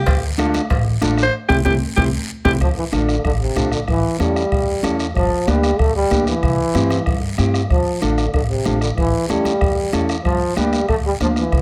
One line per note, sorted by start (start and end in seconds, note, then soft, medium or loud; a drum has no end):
0.00 0.25 G4 loud
0.06 0.58 D2 medium
0.06 bombo low medium
0.06 bombo rim medium
0.06 cowbell loud
0.06 long guiro medium
0.38 0.60 D4 medium
0.38 0.61 F4 medium
0.38 0.61 A4 loud
0.38 bombo rim medium
0.38 high conga medium
0.38 short guiro medium
0.54 bombo rim medium
0.54 high conga medium
0.54 short guiro medium
0.70 0.96 A1 medium
0.70 bombo low medium
0.70 bombo rim medium
0.70 cowbell medium
0.70 long guiro medium
1.01 1.28 A1 medium
1.01 1.24 D4 loud
1.01 1.24 F4 medium
1.01 1.24 A4 medium
1.01 bombo rim medium
1.01 high conga medium
1.01 short guiro medium
1.18 bombo rim medium
1.18 short guiro medium
1.23 1.33 C5 medium
1.49 1.62 C2 loud
1.49 1.60 C4 medium
1.49 1.60 E4 medium
1.49 1.57 G4 loud
1.49 1.60 G4 medium
1.49 bombo low medium
1.49 high conga loud
1.49 high timbale loud
1.49 long guiro loud
1.65 1.78 C2 loud
1.65 1.76 C4 loud
1.65 1.76 E4 loud
1.65 1.73 G4 medium
1.65 1.76 G4 loud
1.65 bombo low loud
1.65 high conga loud
1.65 high timbale loud
1.65 long guiro loud
1.97 2.09 C2 loud
1.97 2.08 C4 medium
1.97 2.08 E4 medium
1.97 2.04 G4 medium
1.97 2.08 G4 loud
1.97 bombo low loud
1.97 high conga medium
1.97 high timbale medium
1.97 long guiro loud
2.45 2.57 C2 medium
2.45 2.55 C4 medium
2.45 2.55 E4 loud
2.45 2.52 G4 medium
2.45 2.55 G4 medium
2.45 bombo low loud
2.45 high conga medium
2.45 high timbale loud
2.45 long guiro loud
2.61 2.74 D2 medium
2.61 2.69 F3 medium
2.61 bombo low medium
2.61 bombo rim medium
2.61 long guiro medium
2.78 2.85 E3 medium
2.92 3.18 A1 medium
2.92 3.23 D3 medium
2.92 3.15 D4 medium
2.92 3.15 F4 medium
2.92 3.15 A4 medium
2.92 bombo rim medium
2.92 high conga medium
2.92 short guiro medium
3.09 bombo rim medium
3.09 short guiro medium
3.25 3.50 A1 medium
3.25 3.32 D3 medium
3.25 bombo low medium
3.25 bombo rim medium
3.25 long guiro medium
3.41 3.70 C3 medium
3.56 3.82 A#1 medium
3.56 3.78 D4 medium
3.56 3.79 F4 medium
3.56 3.79 A4 medium
3.56 bombo low medium
3.56 bombo rim medium
3.56 high conga medium
3.56 short guiro medium
3.72 3.80 D3 medium
3.72 bombo rim medium
3.72 short guiro medium
3.88 4.01 A1 medium
3.88 4.18 E3 loud
3.88 bombo low medium
3.88 bombo rim medium
3.88 long guiro medium
4.19 4.45 E2 medium
4.19 4.96 G3 medium
4.19 4.42 C#4 medium
4.19 4.42 E4 medium
4.19 4.42 A4 medium
4.19 bombo rim medium
4.19 high conga medium
4.19 short guiro medium
4.36 bombo rim medium
4.36 short guiro medium
4.52 4.77 E2 medium
4.52 bombo low medium
4.52 bombo rim medium
4.52 long guiro medium
4.83 5.09 E2 medium
4.83 5.06 C#4 medium
4.83 5.06 E4 medium
4.83 5.06 A4 medium
4.83 bombo rim medium
4.83 high conga medium
4.83 short guiro medium
4.99 bombo rim medium
4.99 short guiro medium
5.15 5.29 G1 medium
5.15 5.49 F3 loud
5.15 bombo low medium
5.15 bombo rim medium
5.15 long guiro medium
5.47 5.73 D2 medium
5.47 5.81 G3 medium
5.47 5.70 A#3 medium
5.47 5.70 D4 medium
5.47 5.70 G4 medium
5.47 bombo rim medium
5.47 high conga medium
5.47 short guiro medium
5.63 bombo rim medium
5.63 short guiro medium
5.79 6.05 D2 medium
5.79 5.95 A3 loud
5.79 bombo low medium
5.79 bombo rim medium
5.79 long guiro medium
5.95 6.25 G3 loud
6.11 6.37 D2 medium
6.11 6.33 A#3 medium
6.11 6.34 D4 medium
6.11 6.34 G4 medium
6.11 bombo low medium
6.11 bombo rim medium
6.11 high conga medium
6.11 short guiro medium
6.27 7.19 E3 medium
6.27 bombo rim medium
6.27 short guiro medium
6.43 6.56 C2 medium
6.43 bombo low medium
6.43 bombo rim medium
6.43 long guiro medium
6.75 7.00 G2 medium
6.75 6.97 C4 medium
6.75 6.97 E4 medium
6.75 6.97 G4 medium
6.75 bombo rim medium
6.75 high conga medium
6.75 short guiro medium
6.90 bombo rim medium
6.90 high conga medium
6.90 short guiro medium
7.06 7.32 G2 medium
7.06 bombo low medium
7.06 bombo rim medium
7.06 long guiro medium
7.38 7.64 G2 medium
7.38 7.60 C4 medium
7.38 7.61 E4 medium
7.38 7.61 G4 medium
7.38 bombo rim medium
7.38 high conga medium
7.38 short guiro medium
7.54 bombo rim medium
7.54 short guiro medium
7.70 7.83 D2 medium
7.70 8.03 F3 medium
7.70 bombo low medium
7.70 bombo rim medium
7.70 long guiro medium
8.02 8.28 A1 medium
8.02 8.33 D3 medium
8.02 8.24 D4 medium
8.02 8.25 F4 medium
8.02 8.25 A4 medium
8.02 bombo rim medium
8.02 high conga medium
8.02 short guiro medium
8.18 bombo rim medium
8.18 short guiro medium
8.34 8.60 A1 medium
8.34 8.41 D3 medium
8.34 bombo low medium
8.34 bombo rim medium
8.34 long guiro medium
8.49 8.79 C3 medium
8.65 8.91 A1 medium
8.65 8.88 D4 medium
8.65 8.88 F4 medium
8.65 8.88 A4 medium
8.65 bombo rim medium
8.65 high conga medium
8.65 short guiro medium
8.81 8.88 D3 medium
8.81 bombo rim medium
8.81 short guiro medium
8.96 9.10 A1 medium
8.96 9.27 E3 medium
8.96 bombo low medium
8.96 bombo rim medium
8.96 long guiro medium
9.28 9.55 E2 medium
9.28 10.04 G3 medium
9.28 9.52 C#4 medium
9.28 9.52 E4 medium
9.28 9.52 A4 medium
9.28 bombo rim medium
9.28 high conga medium
9.28 short guiro medium
9.45 bombo rim medium
9.45 high conga medium
9.45 short guiro medium
9.61 9.87 E2 medium
9.61 bombo low medium
9.61 bombo rim medium
9.61 long guiro medium
9.93 10.19 E2 medium
9.93 10.15 C#4 medium
9.93 10.15 E4 medium
9.93 10.16 A4 medium
9.93 bombo rim medium
9.93 high conga medium
9.93 short guiro medium
10.09 bombo rim medium
10.09 short guiro medium
10.24 10.38 G1 medium
10.24 10.54 F3 loud
10.24 bombo low medium
10.24 bombo rim medium
10.24 long guiro medium
10.56 10.82 D2 medium
10.56 10.86 G3 medium
10.56 10.79 A#3 medium
10.56 10.79 D4 medium
10.56 10.79 G4 medium
10.56 bombo rim medium
10.56 high conga medium
10.56 short guiro medium
10.73 bombo rim medium
10.73 short guiro medium
10.89 11.14 D2 medium
10.89 10.96 A3 loud
10.89 bombo low medium
10.89 bombo rim medium
10.89 long guiro medium
11.05 11.12 G3 loud
11.20 11.46 D2 medium
11.20 11.28 F3 medium
11.20 11.43 A#3 medium
11.20 11.43 D4 medium
11.20 11.43 F4 medium
11.20 bombo rim medium
11.20 high conga medium
11.20 short guiro medium
11.36 11.62 E3 medium
11.36 bombo rim medium
11.36 short guiro medium
11.52 11.62 C2 medium
11.52 bombo low medium
11.52 bombo rim medium
11.52 long guiro medium